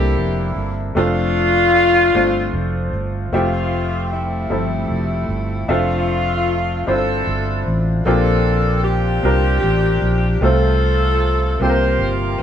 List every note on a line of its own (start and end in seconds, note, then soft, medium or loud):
0.00 0.13 C2 medium
0.00 0.91 C3 soft
0.00 0.51 A#3 medium
0.00 0.80 A#3 soft
0.00 0.51 C4 soft
0.00 0.52 D4 soft
0.00 0.52 E4 soft
0.00 0.80 E4 medium
0.00 0.53 G4 medium
0.00 0.53 A4 medium
0.17 0.53 F1 medium
0.56 0.92 G1 medium
0.95 2.10 F1 medium
0.95 1.70 A3 medium
0.95 2.90 A3 medium
0.95 1.70 C4 medium
0.95 1.71 D4 medium
0.95 2.90 D4 medium
0.95 1.71 F4 medium
0.95 2.90 F4 loud
0.95 1.71 A4 medium
2.14 2.50 G1 medium
2.14 2.89 A3 medium
2.14 2.89 C4 medium
2.14 2.89 D4 medium
2.14 2.89 F4 medium
2.14 2.89 C5 medium
2.53 2.89 F1 medium
2.93 3.29 G1 medium
3.32 4.46 F1 medium
3.32 4.07 A3 medium
3.32 4.12 A3 medium
3.32 4.07 C4 medium
3.32 4.48 C4 medium
3.32 4.08 F4 medium
3.32 4.08 G4 medium
3.32 4.08 E5 soft
4.12 5.66 G3 medium
4.12 5.66 A3 medium
4.12 5.65 E4 medium
4.50 4.87 G1 medium
4.50 5.26 F3 soft
4.50 5.25 A3 medium
4.50 5.25 C4 soft
4.50 5.25 E4 soft
4.50 5.26 A4 soft
4.90 5.26 F1 medium
5.29 5.65 G1 medium
5.68 6.83 F1 medium
5.68 6.84 A3 medium
5.68 6.44 C4 medium
5.68 6.84 C4 medium
5.68 6.44 D4 soft
5.68 6.87 F4 medium
5.68 6.44 F4 medium
5.68 6.44 A4 medium
5.68 6.44 E5 medium
6.87 7.24 G1 medium
6.87 7.62 C4 soft
6.87 8.02 C4 medium
6.87 7.62 D4 soft
6.87 8.02 D4 medium
6.87 7.62 E4 soft
6.87 7.63 F4 soft
6.87 7.76 A4 medium
6.87 7.63 C5 medium
7.27 7.63 G1 medium
7.66 8.03 A1 medium
8.05 9.20 A#1 medium
8.05 9.20 A#2 soft
8.05 8.81 A#3 medium
8.05 8.80 C4 medium
8.05 8.85 C4 medium
8.05 8.81 D4 soft
8.05 8.85 D4 medium
8.05 8.81 F4 medium
8.05 8.81 G4 medium
8.05 8.80 A4 medium
8.84 10.39 C4 medium
8.84 10.39 D4 medium
8.84 10.42 G4 medium
9.23 9.60 C2 medium
9.23 9.98 C4 soft
9.23 9.98 D4 soft
9.23 9.99 F4 soft
9.23 9.99 G4 soft
9.23 9.99 A#4 medium
9.63 9.99 A1 medium
10.02 10.39 A#1 medium
10.41 11.56 C2 medium
10.41 11.57 C3 soft
10.41 11.17 A3 medium
10.41 11.17 C4 medium
10.41 11.57 C4 medium
10.41 11.17 F4 soft
10.41 11.57 F4 medium
10.41 11.60 A4 medium
10.41 11.18 A4 medium
10.41 11.18 C5 medium
11.60 11.96 C2 medium
11.60 12.43 C3 soft
11.60 12.35 A#3 medium
11.60 12.35 C4 soft
11.60 12.36 F4 soft
11.60 12.43 F4 medium
11.60 12.36 G4 soft
11.60 12.43 G4 medium
11.60 11.68 A4 soft
11.60 12.12 C5 medium
11.69 12.40 A#4 medium
11.99 12.36 G1 medium
12.37 12.43 C5 medium